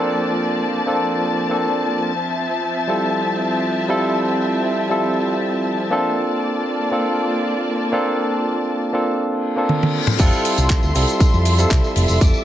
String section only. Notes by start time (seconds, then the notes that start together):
Already playing: F3 A#3 D5 A5
2.13 C4 E5
6.16 A#3 F4 D5
10.19 A4 E5 C6
12.21 D6